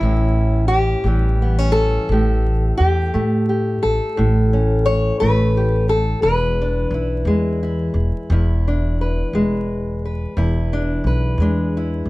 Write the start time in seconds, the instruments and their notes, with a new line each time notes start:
Already playing: steel-string acoustic guitar E3 G3 E4
0.01 upright bass A1, steel-string acoustic guitar A2 C#4
0.68 steel-string acoustic guitar G4
1.04 upright bass A1, steel-string acoustic guitar E3 G3
1.42 steel-string acoustic guitar B3
1.58 steel-string acoustic guitar C#4
1.72 steel-string acoustic guitar A4
2.09 upright bass A1, steel-string acoustic guitar A2 G4
2.77 upright bass E2, steel-string acoustic guitar G4
3.14 upright bass A2, steel-string acoustic guitar A3
3.49 steel-string acoustic guitar G4
3.83 upright bass A1, steel-string acoustic guitar A4
4.17 upright bass A1, steel-string acoustic guitar A2
4.53 steel-string acoustic guitar C#4
4.86 steel-string acoustic guitar C#5
5.20 upright bass A1, steel-string acoustic guitar A3 B4
5.57 steel-string acoustic guitar G4
5.89 steel-string acoustic guitar A4
6.22 upright bass E1, steel-string acoustic guitar E2 B4
6.62 steel-string acoustic guitar D4
6.91 upright bass B1, steel-string acoustic guitar E4
7.25 upright bass E2, steel-string acoustic guitar G#3
7.63 steel-string acoustic guitar E4
7.94 upright bass E1
8.30 upright bass E1, steel-string acoustic guitar E2 E4
8.68 steel-string acoustic guitar D4
9.01 steel-string acoustic guitar B4
9.33 upright bass E1, steel-string acoustic guitar G#3
10.05 steel-string acoustic guitar B4
10.37 upright bass E1, steel-string acoustic guitar E2 E4
10.73 steel-string acoustic guitar D4
11.04 upright bass B1, steel-string acoustic guitar B4
11.38 upright bass E2, steel-string acoustic guitar G#3 D4
11.77 steel-string acoustic guitar E4
12.05 upright bass E1